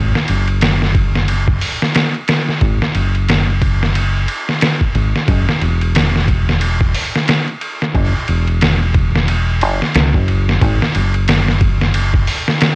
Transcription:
Already playing: G#1
0.15 snare
0.28 F#1, ride
0.47 ride
0.61 snare, ride
0.82 snare
0.95 kick, ride
1.15 snare
1.28 ride
1.48 kick
1.61 open hi-hat
1.82 snare
1.95 snare, ride
2.14 ride
2.28 snare, ride
2.49 snare
2.61 G#1, kick, ride
2.82 snare
2.95 F#1, ride
3.15 ride
3.29 snare, ride
3.62 kick, ride
3.83 snare
3.95 ride
4.28 ride
4.49 snare
4.61 snare, ride
4.81 kick
4.95 G#1, ride
5.16 snare
5.28 F#1, kick, ride
5.49 snare
5.61 E1, ride
5.81 ride
5.95 snare, ride
6.16 snare
6.28 kick, ride
6.49 snare
6.61 ride
6.81 kick
6.95 open hi-hat
7.16 snare
7.28 snare, ride
7.48 ride
7.61 ride
7.82 snare
7.95 F#1, kick, ride
8.28 E1, ride
8.48 ride
8.61 snare, ride
8.94 kick, ride
9.16 snare
9.28 ride
9.61 F#1, ride
9.82 snare
9.94 C#2, snare, ride
10.14 F#1, kick
10.28 ride
10.49 snare
10.61 G#1, kick, ride
10.82 snare
10.95 F#1, ride
11.14 ride
11.28 snare, ride
11.48 snare
11.61 kick, ride
11.81 snare
11.94 ride
12.14 kick
12.27 open hi-hat
12.48 snare
12.60 snare, ride

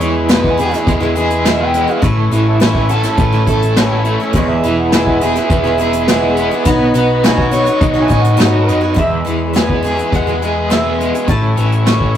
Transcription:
Already playing: E2 G#4 C#5 E5 B5
0.00 E2 E3 G#3 B3 E4, closed hi-hat
0.13 G#4
0.29 E2 B2 E3 G#3 B3 E4, snare, closed hi-hat
0.33 B4
0.44 kick
0.51 G#4
0.58 E3 G#3 B3 E4 G#4, closed hi-hat
0.71 E3 G#3 B3 E4, snare, closed hi-hat
0.87 E2 G#3, kick, closed hi-hat
1.00 G#3 B3 E4
1.05 E3
1.16 E3 G#3 B3 E4 G#4, closed hi-hat
1.30 closed hi-hat
1.45 E2 B2 E3 G#3 B3 E4 E5, snare, closed hi-hat
1.61 G5
1.73 G#3, closed hi-hat
1.88 E3 G#3 B3 E4
1.92 F5
2.02 A1 A2 E3 A3 C#4 E4 A4 C#6, kick, closed hi-hat
2.31 A1 E3 A3 C#4, closed hi-hat
2.35 E4
2.49 A4 C#5 E5
2.60 A2 E3 A3 C#4 E4, snare, closed hi-hat
2.75 B4, kick
2.89 E3 A3 C#4 E4 F#4 A4, closed hi-hat
3.03 C#4 E4, snare, closed hi-hat
3.07 A3
3.17 A1 A3 B4, kick, closed hi-hat
3.33 A3 C#4 E4
3.47 E3 A3 C#4 A4, kick, closed hi-hat
3.52 E4
3.62 closed hi-hat
3.76 A2 E3 A3 C#4 E4, snare, closed hi-hat
4.05 A3, closed hi-hat
4.20 A3 C#4 E4
4.33 E1 E2 B2 E3 B3 C#5 E5 B5, kick, closed hi-hat
4.37 G#3 G#4
4.49 E5
4.63 E1 E3 G#3 B3, closed hi-hat
4.67 G#4
4.78 F#5
4.92 E2 B2 E3 G#3 B3 E4 G#4 G#5, snare, closed hi-hat
5.06 kick
5.21 E3 G#3 B3 G#4 E5, closed hi-hat
5.35 E3 G#3 B3 G#4, snare, closed hi-hat
5.50 E1 B3, kick, closed hi-hat
5.64 E3 G#3 B3 G#4
5.78 E3 G#3 B3 G#4, closed hi-hat
5.93 closed hi-hat
6.07 E2 B2 E3 G#3 B3 E4 G#4, snare, closed hi-hat
6.35 B3, closed hi-hat
6.51 E3 G#3 B3 G#4
6.65 B1 B3 D#4 F#4 B4 C#5 D#5 C#6, kick, closed hi-hat
6.94 B1 B3 D#4 F#4 C#5, closed hi-hat
7.24 B3 D#4 F#4 C#5 G#5, snare, closed hi-hat
7.38 kick
7.43 F#5
7.51 B3 D#4 F#4 C#5, closed hi-hat
7.64 F#4 B4 C#5, closed hi-hat
7.68 D#4
7.81 B1 D#4 C#5, kick, closed hi-hat
7.94 D#4 F#4 C#5
8.01 B4 E5 G#5
8.08 A2 B3 D#4 F#4 C#5, kick, closed hi-hat
8.22 F#5, closed hi-hat
8.37 B3 D#4 F#4 B4 C#5, snare, closed hi-hat
8.60 B4
8.68 F#2 D#4, closed hi-hat
8.81 D#4 F#4 C#5
8.94 E2 B2 E3 G#3 B3 G#4 E5 B5, kick, closed hi-hat
8.99 E5
9.25 E2 E3 G#3 B3 G#4, closed hi-hat
9.53 E2 B2 E3 G#3 B3 G#4 G#5, snare, closed hi-hat
9.69 kick
9.83 E3 G#3 B3, closed hi-hat
9.87 G#4
9.96 G#3 B3 G#4, closed hi-hat
10.01 E3
10.12 E2 G#3 F#5, kick, closed hi-hat
10.27 E3 G#3 B3 G#4
10.42 E3 G#3 B3 G#4, closed hi-hat
10.70 E2 B2 E3 G#3 B3 G#4 E5, snare, closed hi-hat
10.99 G#3, closed hi-hat
11.14 E3 G#3 B3 G#4, closed hi-hat
11.26 A1 A2 E3 A3 A4 A5 C#6, kick, closed hi-hat
11.30 C#4 E4
11.57 A1 E3 A3 C#4 E4, closed hi-hat
11.72 closed hi-hat
11.86 A2 E3 A3 C#4 E4 C#6, snare, closed hi-hat
12.00 kick

